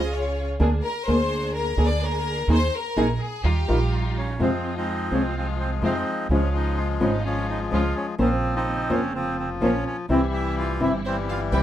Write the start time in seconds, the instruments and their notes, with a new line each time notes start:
Already playing: upright bass C#2, string section C#4 F4 G#4, violin section D#5
0.13 violin section C#5
0.59 upright bass D2, nylon-string guitar D3 A#3 D4 G#4, string section A#3 D4 G#4
0.84 violin section A#4
1.06 upright bass D2, nylon-string guitar D3 A#3 D4 G#4, string section A#3 D4 G#4, violin section C5
1.55 violin section A#4
1.77 upright bass D2, nylon-string guitar D3 A#3 D4 G#4, string section A#3 D4 G#4
1.87 violin section D5
2.03 violin section A#4
2.48 upright bass D#2, nylon-string guitar D#3 A#3 D#4 G#4, string section A#3 D#4 G#4
2.53 violin section C5
2.75 violin section A#4
2.96 upright bass A#1, nylon-string guitar D#3 A#3 D#4 G#4, string section A#3 D#4 G#4
3.15 violin section A#4
3.21 violin section G#4
3.43 upright bass D#2, string section G3 D#4 F4, violin section G4
3.68 upright bass A#1, nylon-string guitar D#3 G3 D#4 F4, string section G3 D#4 F4
4.18 bandoneon C#4
4.39 upright bass F2, nylon-string guitar C3 F3 G#3 C4 F4, bandoneon F3 G#3 C4, string section G#3 C4 F4
4.77 bandoneon G#3 C4 D#4
5.11 upright bass C2, nylon-string guitar C3 F3 G#3 C4 F4, string section G#3 C4 F4, bandoneon C#4
5.37 bandoneon F3 G#3 C4
5.60 bandoneon C4
5.82 upright bass F2, nylon-string guitar C3 F3 G#3 C4 F4, string section G#3 C4 F4, bandoneon G#3 C4 D#4
6.29 upright bass C#2, nylon-string guitar C#3 F3 G#3 C#4 F4, bandoneon F3 G#3 C#4, string section G#3 C#4 F4
6.56 bandoneon D#4
6.78 bandoneon F4
7.00 upright bass G#1, nylon-string guitar C#3 F3 G#3 C#4 F4, string section G#3 C#4 F4, bandoneon D#4
7.24 bandoneon F3 G#3 C#4
7.49 bandoneon D#4
7.71 upright bass C#2, nylon-string guitar C#3 F3 G#3 C#4 F4, string section G#3 C#4 F4, bandoneon F4
7.96 bandoneon C#4
8.18 upright bass A#1, string section C#3 A#3 C4, nylon-string guitar F3 A#3 C#4 F4 C5, bandoneon F3 C4
8.56 bandoneon C4 D#4
8.90 upright bass F1, string section C#3 A#3 C4, nylon-string guitar F3 A#3 C#4 F4 C5, bandoneon C#4
9.15 bandoneon F3 C4
9.39 bandoneon C4
9.61 upright bass A#1, nylon-string guitar F3 A#3 C#4 F4 C5, string section A#3 C4 C#4, bandoneon C#4
9.87 bandoneon C#4
10.09 upright bass C2, nylon-string guitar C3 E3 G3 C4 E4, bandoneon E3 G3 C4, string section G3 C4 E4
10.34 bandoneon E4
10.59 bandoneon F4
10.80 upright bass G1, nylon-string guitar C3 E3 G3 C4 E4, string section G3 C4 E4, bandoneon E4
11.06 bandoneon E3 G3 C4, violin section C5
11.29 bandoneon F4, violin section F5
11.52 upright bass C2, nylon-string guitar C3 E3 G3 C4 E4, string section G3 C4 E4, bandoneon G4, violin section G5